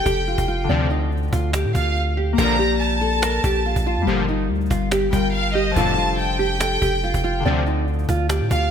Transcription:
0.00 0.74 F3 medium
0.00 1.80 D4 medium
0.00 0.74 F4 soft
0.00 1.25 A4 medium
0.00 0.65 G5 medium
0.05 0.37 F1 loud
0.05 0.25 G4 medium
0.05 cajon bass loud
0.27 0.47 F4 medium
0.27 cajon slap soft
0.38 0.68 F1 loud
0.38 cajon bass medium
0.48 0.67 F4 medium
0.48 cajon slap soft
0.64 2.43 D3 medium
0.69 1.30 D2 loud
0.69 0.87 C3 loud
0.69 0.87 D3 medium
0.69 0.87 F3 loud
0.69 3.69 C4 medium
0.69 0.89 D5 medium
0.69 cajon slap soft
0.75 2.38 F4 medium
0.90 1.09 D#4 medium
0.90 cajon slap soft
1.11 cajon slap soft
1.17 cajon slap soft
1.23 cajon slap soft
1.28 cajon slap soft
1.33 1.66 D2 loud
1.33 1.52 F4 medium
1.33 cajon bass loud
1.53 1.73 G4 medium
1.53 cajon slap medium
1.53 cajon slap loud
1.65 1.74 A2 loud
1.75 2.36 D2 loud
1.75 2.14 F4 medium
1.75 1.95 F5 medium
1.75 cajon bass loud
1.96 cajon slap soft
2.17 2.36 G4 medium
2.33 5.54 A#3 medium
2.38 3.40 A#1 loud
2.38 2.56 A#2 medium
2.38 2.56 D3 loud
2.38 2.56 F3 loud
2.38 4.07 F4 medium
2.38 2.58 A#4 loud
2.38 2.78 A#5 loud
2.38 cajon bass loud
2.44 4.28 D5 medium
2.59 2.78 G4 medium
2.59 cajon slap soft
2.80 4.03 A5 medium
2.80 cajon slap soft
3.01 3.21 A4 medium
3.01 cajon slap soft
3.22 3.42 A#4 medium
3.22 cajon slap medium
3.22 cajon slap loud
3.44 3.75 A#1 loud
3.44 3.63 G4 medium
3.44 cajon bass loud
3.65 3.85 F4 medium
3.65 cajon slap soft
3.76 3.99 A#1 loud
3.76 cajon bass loud
3.86 4.06 F4 medium
3.86 cajon slap soft
3.97 4.07 F2 loud
4.02 5.09 G3 medium
4.07 4.51 G1 loud
4.07 4.25 A#2 loud
4.07 4.25 D3 loud
4.07 4.25 F3 loud
4.07 5.12 F4 medium
4.07 4.26 G4 medium
4.07 cajon slap soft
4.13 5.15 A#4 medium
4.28 4.48 D#4 medium
4.28 cajon slap soft
4.50 4.70 D2 loud
4.50 cajon slap soft
4.55 cajon slap soft
4.61 cajon slap soft
4.66 cajon slap soft
4.70 5.11 G1 loud
4.70 4.90 F4 medium
4.70 cajon bass loud
4.91 5.11 G4 loud
4.91 cajon slap medium
4.91 cajon slap loud
5.10 5.74 G1 loud
5.10 5.81 G3 medium
5.10 5.52 F4 medium
5.10 7.50 F4 soft
5.10 5.33 G5 medium
5.10 cajon bass loud
5.16 5.88 A#4 medium
5.34 5.54 F5 medium
5.34 cajon slap soft
5.55 5.74 G4 medium
5.55 5.75 D#5 loud
5.71 7.50 F3 medium
5.76 6.78 F1 loud
5.76 5.94 F2 loud
5.76 5.94 A2 loud
5.76 5.94 D3 loud
5.76 8.56 D4 medium
5.76 5.96 F4 medium
5.76 6.16 A5 loud
5.76 cajon bass loud
5.82 8.02 A4 medium
5.98 6.17 F4 medium
6.18 7.41 G5 medium
6.18 cajon slap soft
6.39 6.59 G4 medium
6.39 cajon slap soft
6.60 6.80 A4 medium
6.60 cajon slap medium
6.60 cajon slap loud
6.81 7.13 F1 loud
6.81 7.01 G4 medium
6.81 cajon bass loud
7.03 7.23 F4 medium
7.03 cajon slap soft
7.14 7.44 F1 loud
7.14 cajon bass loud
7.24 7.43 F4 medium
7.40 8.71 D3 medium
7.45 8.06 D2 loud
7.45 7.63 C3 loud
7.45 7.63 D3 loud
7.45 7.63 F3 loud
7.45 8.71 C4 medium
7.45 7.65 D5 medium
7.45 cajon slap soft
7.51 8.71 F4 medium
7.66 7.86 D#4 medium
7.66 cajon slap soft
7.88 cajon slap soft
7.93 cajon slap soft
7.99 cajon slap soft
8.04 cajon slap soft
8.09 8.43 D2 loud
8.09 8.28 F4 medium
8.09 cajon bass loud
8.29 8.49 G4 medium
8.29 cajon slap loud
8.41 8.50 A2 loud
8.51 8.71 D2 loud
8.51 8.71 F4 medium
8.51 8.71 F5 medium
8.51 cajon bass loud

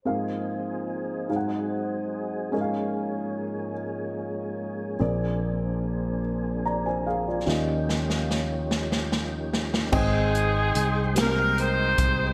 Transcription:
0.04 1.26 G#2 soft
0.04 1.29 F3 soft
0.04 1.29 A#3 soft
0.04 1.29 C4 soft
0.04 2.51 C4 soft
0.04 2.51 D#4 soft
0.04 1.28 F4 soft
0.04 2.50 G#4 soft
0.04 1.28 G#4 soft
0.04 7.44 G#4 soft
0.04 1.28 A#4 soft
0.04 1.30 A#4 soft
0.04 2.50 C5 medium
0.04 1.28 F5 medium
1.28 2.49 G#2 soft
1.28 2.52 F#3 soft
1.28 2.52 G#3 soft
1.28 2.51 D#4 soft
1.28 2.53 D#4 soft
1.28 2.51 F#4 soft
1.28 2.51 G#4 soft
1.28 2.53 C5 soft
1.28 1.36 F5 soft
1.36 2.57 F#5 soft
2.51 3.73 G#2 medium
2.51 4.98 G#2 soft
2.51 9.89 F3 soft
2.51 4.97 G#3 medium
2.51 4.98 G#3 soft
2.51 4.98 A#3 soft
2.51 4.96 C#4 medium
2.51 4.98 C#4 soft
2.51 4.97 F4 soft
2.51 7.42 G#4 soft
2.51 4.96 G#4 soft
2.51 4.97 A#4 soft
2.51 4.96 A#4 soft
2.51 4.97 C#5 medium
2.51 2.60 D#5 soft
2.61 5.00 F5 medium
4.99 7.43 A#1 medium
4.99 6.19 A#2 soft
4.99 9.90 A#3 soft
4.99 7.42 C4 medium
4.99 7.45 C4 soft
4.99 7.44 D4 medium
4.99 7.46 D4 soft
4.99 6.61 G#4 medium
4.99 7.44 A#4 soft
4.99 6.62 A#4 soft
4.99 7.44 C5 medium
4.99 6.62 D5 medium
6.66 6.85 D5 soft
6.66 6.85 A#5 soft
6.86 7.06 C5 soft
6.86 7.05 G#5 medium
7.07 7.26 G#4 soft
7.07 7.26 F5 medium
7.28 7.45 F4 soft
7.28 7.66 D5 soft
7.45 9.89 D#2 medium
7.45 8.66 D#3 medium
7.45 9.88 C#4 soft
7.45 9.91 C#4 soft
7.45 9.90 D#4 soft
7.45 9.92 D#4 soft
7.45 9.90 F4 soft
7.45 9.89 F4 medium
7.45 9.90 G4 medium
7.45 9.89 G4 soft
7.45 9.91 G4 medium
7.45 9.90 C#5 medium
7.45 9.90 D#5 medium
7.45 snare soft
7.89 snare soft
8.10 snare soft
8.30 snare medium
8.71 snare medium
8.92 snare medium
9.12 snare medium
9.53 snare medium
9.74 snare medium
9.92 10.71 G#1 medium
9.92 11.11 G#2 medium
9.92 12.33 G#3 medium
9.92 11.00 C4 medium
9.92 11.12 C4 medium
9.92 11.12 D#4 medium
9.92 11.00 G#4 medium
9.92 11.13 G#4 loud
9.92 11.00 D#5 medium
9.92 12.33 D#5 medium
9.92 11.00 G5 medium
9.92 12.33 G5 medium
9.92 12.33 C6 medium
9.92 kick medium
9.92 crash medium
10.35 closed hi-hat soft
10.75 11.94 C2 medium
10.75 closed hi-hat medium
11.15 12.23 G#3 soft
11.15 11.22 A#3 soft
11.15 12.23 G4 soft
11.15 12.23 A#4 medium
11.15 snare loud
11.15 closed hi-hat medium
11.19 12.26 C4 medium
11.19 11.58 A#4 medium
11.58 12.33 D#4 medium
11.58 12.33 G4 medium
11.58 12.33 C5 loud
11.58 closed hi-hat soft
11.98 12.33 C2 medium
11.98 kick medium
11.98 closed hi-hat medium

